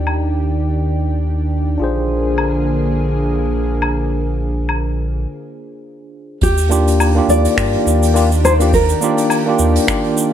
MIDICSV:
0, 0, Header, 1, 6, 480
1, 0, Start_track
1, 0, Tempo, 576923
1, 1502, Time_signature, 4, 2, 24, 8
1, 8595, End_track
2, 0, Start_track
2, 0, Title_t, "Nylon-string guitar"
2, 0, Program_c, 0, 24
2, 5350, Note_on_c, 0, 67, 92
2, 6033, Note_off_c, 0, 67, 0
2, 6071, Note_on_c, 0, 74, 110
2, 6753, Note_off_c, 0, 74, 0
2, 7027, Note_on_c, 0, 72, 100
2, 7091, Note_off_c, 0, 72, 0
2, 7269, Note_on_c, 0, 70, 111
2, 8595, Note_off_c, 0, 70, 0
2, 8595, End_track
3, 0, Start_track
3, 0, Title_t, "Tine electric piano"
3, 0, Program_c, 1, 4
3, 0, Note_on_c, 1, 62, 65
3, 0, Note_on_c, 1, 65, 55
3, 0, Note_on_c, 1, 67, 52
3, 0, Note_on_c, 1, 70, 67
3, 1465, Note_off_c, 1, 62, 0
3, 1473, Note_off_c, 1, 65, 0
3, 1478, Note_on_c, 1, 62, 60
3, 1483, Note_off_c, 1, 67, 0
3, 1492, Note_off_c, 1, 70, 0
3, 1495, Note_on_c, 1, 65, 58
3, 1512, Note_on_c, 1, 68, 59
3, 1528, Note_on_c, 1, 72, 68
3, 5304, Note_off_c, 1, 62, 0
3, 5312, Note_off_c, 1, 65, 0
3, 5321, Note_off_c, 1, 68, 0
3, 5329, Note_off_c, 1, 72, 0
3, 5567, Note_on_c, 1, 58, 82
3, 5578, Note_on_c, 1, 62, 83
3, 5586, Note_on_c, 1, 65, 82
3, 5594, Note_on_c, 1, 67, 96
3, 5916, Note_off_c, 1, 58, 0
3, 5921, Note_off_c, 1, 62, 0
3, 5925, Note_off_c, 1, 65, 0
3, 5929, Note_off_c, 1, 67, 0
3, 5948, Note_on_c, 1, 58, 83
3, 5957, Note_on_c, 1, 62, 82
3, 5965, Note_on_c, 1, 65, 77
3, 5975, Note_on_c, 1, 67, 93
3, 6272, Note_off_c, 1, 58, 0
3, 6277, Note_off_c, 1, 62, 0
3, 6281, Note_off_c, 1, 65, 0
3, 6286, Note_off_c, 1, 67, 0
3, 6292, Note_on_c, 1, 58, 78
3, 6300, Note_on_c, 1, 62, 69
3, 6306, Note_on_c, 1, 65, 70
3, 6317, Note_on_c, 1, 67, 85
3, 6751, Note_off_c, 1, 58, 0
3, 6755, Note_off_c, 1, 62, 0
3, 6758, Note_off_c, 1, 65, 0
3, 6764, Note_off_c, 1, 67, 0
3, 6771, Note_on_c, 1, 58, 89
3, 6780, Note_on_c, 1, 62, 83
3, 6788, Note_on_c, 1, 65, 86
3, 6798, Note_on_c, 1, 67, 93
3, 6895, Note_off_c, 1, 58, 0
3, 6899, Note_off_c, 1, 62, 0
3, 6903, Note_off_c, 1, 65, 0
3, 6908, Note_off_c, 1, 67, 0
3, 7148, Note_on_c, 1, 58, 91
3, 7156, Note_on_c, 1, 62, 80
3, 7165, Note_on_c, 1, 65, 82
3, 7173, Note_on_c, 1, 67, 92
3, 7245, Note_off_c, 1, 58, 0
3, 7249, Note_off_c, 1, 62, 0
3, 7254, Note_off_c, 1, 65, 0
3, 7258, Note_off_c, 1, 67, 0
3, 7493, Note_on_c, 1, 58, 85
3, 7504, Note_on_c, 1, 62, 79
3, 7512, Note_on_c, 1, 65, 78
3, 7521, Note_on_c, 1, 67, 96
3, 7839, Note_off_c, 1, 58, 0
3, 7845, Note_off_c, 1, 62, 0
3, 7849, Note_off_c, 1, 65, 0
3, 7853, Note_off_c, 1, 67, 0
3, 7870, Note_on_c, 1, 58, 86
3, 7879, Note_on_c, 1, 62, 82
3, 7888, Note_on_c, 1, 65, 77
3, 7898, Note_on_c, 1, 67, 91
3, 8193, Note_off_c, 1, 58, 0
3, 8198, Note_off_c, 1, 62, 0
3, 8202, Note_off_c, 1, 65, 0
3, 8207, Note_off_c, 1, 67, 0
3, 8213, Note_on_c, 1, 58, 77
3, 8221, Note_on_c, 1, 62, 76
3, 8230, Note_on_c, 1, 65, 69
3, 8237, Note_on_c, 1, 67, 88
3, 8595, Note_off_c, 1, 58, 0
3, 8595, Note_off_c, 1, 62, 0
3, 8595, Note_off_c, 1, 65, 0
3, 8595, Note_off_c, 1, 67, 0
3, 8595, End_track
4, 0, Start_track
4, 0, Title_t, "Analog synth pad"
4, 0, Program_c, 2, 89
4, 0, Note_on_c, 2, 51, 72
4, 0, Note_on_c, 2, 62, 65
4, 0, Note_on_c, 2, 67, 75
4, 1468, Note_off_c, 2, 51, 0
4, 1469, Note_off_c, 2, 67, 0
4, 1470, Note_off_c, 2, 62, 0
4, 1488, Note_on_c, 2, 50, 69
4, 1491, Note_on_c, 2, 58, 63
4, 1491, Note_on_c, 2, 68, 82
4, 4346, Note_off_c, 2, 50, 0
4, 4347, Note_off_c, 2, 58, 0
4, 4347, Note_off_c, 2, 68, 0
4, 5347, Note_on_c, 2, 67, 82
4, 5348, Note_on_c, 2, 51, 84
4, 5349, Note_on_c, 2, 62, 74
4, 8595, Note_off_c, 2, 51, 0
4, 8595, Note_off_c, 2, 62, 0
4, 8595, Note_off_c, 2, 67, 0
4, 8595, End_track
5, 0, Start_track
5, 0, Title_t, "Sub bass"
5, 0, Program_c, 3, 38
5, 0, Note_on_c, 3, 39, 88
5, 1479, Note_off_c, 3, 39, 0
5, 1496, Note_on_c, 3, 34, 87
5, 4379, Note_off_c, 3, 34, 0
5, 5340, Note_on_c, 3, 39, 104
5, 5997, Note_off_c, 3, 39, 0
5, 6059, Note_on_c, 3, 39, 91
5, 6220, Note_off_c, 3, 39, 0
5, 6302, Note_on_c, 3, 43, 79
5, 6462, Note_off_c, 3, 43, 0
5, 6543, Note_on_c, 3, 39, 94
5, 7438, Note_off_c, 3, 39, 0
5, 7981, Note_on_c, 3, 39, 95
5, 8141, Note_off_c, 3, 39, 0
5, 8595, End_track
6, 0, Start_track
6, 0, Title_t, "Drums"
6, 56, Note_on_c, 9, 77, 47
6, 140, Note_off_c, 9, 77, 0
6, 1979, Note_on_c, 9, 77, 51
6, 2062, Note_off_c, 9, 77, 0
6, 3178, Note_on_c, 9, 77, 53
6, 3262, Note_off_c, 9, 77, 0
6, 3901, Note_on_c, 9, 77, 51
6, 3984, Note_off_c, 9, 77, 0
6, 5334, Note_on_c, 9, 46, 73
6, 5340, Note_on_c, 9, 36, 116
6, 5352, Note_on_c, 9, 82, 63
6, 5417, Note_off_c, 9, 46, 0
6, 5423, Note_off_c, 9, 36, 0
6, 5435, Note_off_c, 9, 82, 0
6, 5471, Note_on_c, 9, 46, 52
6, 5472, Note_on_c, 9, 82, 43
6, 5555, Note_off_c, 9, 46, 0
6, 5556, Note_off_c, 9, 82, 0
6, 5589, Note_on_c, 9, 82, 81
6, 5672, Note_off_c, 9, 82, 0
6, 5720, Note_on_c, 9, 46, 61
6, 5723, Note_on_c, 9, 82, 49
6, 5804, Note_off_c, 9, 46, 0
6, 5807, Note_off_c, 9, 82, 0
6, 5822, Note_on_c, 9, 46, 70
6, 5825, Note_on_c, 9, 77, 58
6, 5828, Note_on_c, 9, 82, 55
6, 5905, Note_off_c, 9, 46, 0
6, 5909, Note_off_c, 9, 77, 0
6, 5911, Note_off_c, 9, 82, 0
6, 6070, Note_on_c, 9, 82, 79
6, 6153, Note_off_c, 9, 82, 0
6, 6196, Note_on_c, 9, 46, 57
6, 6201, Note_on_c, 9, 82, 50
6, 6279, Note_off_c, 9, 46, 0
6, 6284, Note_off_c, 9, 82, 0
6, 6300, Note_on_c, 9, 46, 71
6, 6302, Note_on_c, 9, 36, 108
6, 6304, Note_on_c, 9, 26, 81
6, 6308, Note_on_c, 9, 82, 59
6, 6383, Note_off_c, 9, 46, 0
6, 6385, Note_off_c, 9, 36, 0
6, 6387, Note_off_c, 9, 26, 0
6, 6391, Note_off_c, 9, 82, 0
6, 6428, Note_on_c, 9, 46, 50
6, 6511, Note_off_c, 9, 46, 0
6, 6550, Note_on_c, 9, 82, 90
6, 6634, Note_off_c, 9, 82, 0
6, 6680, Note_on_c, 9, 46, 58
6, 6680, Note_on_c, 9, 82, 46
6, 6763, Note_off_c, 9, 46, 0
6, 6763, Note_off_c, 9, 82, 0
6, 6787, Note_on_c, 9, 46, 77
6, 6791, Note_on_c, 9, 82, 60
6, 6871, Note_off_c, 9, 46, 0
6, 6874, Note_off_c, 9, 82, 0
6, 6920, Note_on_c, 9, 46, 45
6, 6920, Note_on_c, 9, 82, 47
6, 7004, Note_off_c, 9, 46, 0
6, 7004, Note_off_c, 9, 82, 0
6, 7030, Note_on_c, 9, 77, 54
6, 7030, Note_on_c, 9, 82, 77
6, 7113, Note_off_c, 9, 77, 0
6, 7113, Note_off_c, 9, 82, 0
6, 7155, Note_on_c, 9, 46, 65
6, 7161, Note_on_c, 9, 82, 53
6, 7238, Note_off_c, 9, 46, 0
6, 7244, Note_off_c, 9, 82, 0
6, 7262, Note_on_c, 9, 36, 118
6, 7267, Note_on_c, 9, 82, 56
6, 7270, Note_on_c, 9, 46, 77
6, 7345, Note_off_c, 9, 36, 0
6, 7351, Note_off_c, 9, 82, 0
6, 7354, Note_off_c, 9, 46, 0
6, 7392, Note_on_c, 9, 46, 49
6, 7399, Note_on_c, 9, 82, 45
6, 7475, Note_off_c, 9, 46, 0
6, 7482, Note_off_c, 9, 82, 0
6, 7503, Note_on_c, 9, 82, 88
6, 7586, Note_off_c, 9, 82, 0
6, 7636, Note_on_c, 9, 46, 59
6, 7637, Note_on_c, 9, 82, 49
6, 7719, Note_off_c, 9, 46, 0
6, 7721, Note_off_c, 9, 82, 0
6, 7737, Note_on_c, 9, 46, 66
6, 7738, Note_on_c, 9, 77, 58
6, 7747, Note_on_c, 9, 82, 57
6, 7820, Note_off_c, 9, 46, 0
6, 7821, Note_off_c, 9, 77, 0
6, 7830, Note_off_c, 9, 82, 0
6, 7978, Note_on_c, 9, 82, 93
6, 8061, Note_off_c, 9, 82, 0
6, 8116, Note_on_c, 9, 46, 65
6, 8125, Note_on_c, 9, 82, 51
6, 8200, Note_off_c, 9, 46, 0
6, 8208, Note_off_c, 9, 82, 0
6, 8221, Note_on_c, 9, 36, 117
6, 8222, Note_on_c, 9, 82, 57
6, 8223, Note_on_c, 9, 26, 86
6, 8304, Note_off_c, 9, 36, 0
6, 8305, Note_off_c, 9, 82, 0
6, 8306, Note_off_c, 9, 26, 0
6, 8351, Note_on_c, 9, 46, 49
6, 8435, Note_off_c, 9, 46, 0
6, 8465, Note_on_c, 9, 82, 100
6, 8548, Note_off_c, 9, 82, 0
6, 8595, End_track
0, 0, End_of_file